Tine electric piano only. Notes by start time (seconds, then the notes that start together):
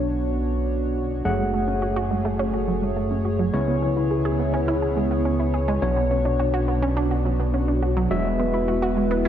Already playing: B2 B3 D4 C#5
1.25 A3 G#4 F#5
3.54 C#3 B3 E4 C#5
5.82 B2 B3 D4 C#5
8.11 G#3 F#4 E5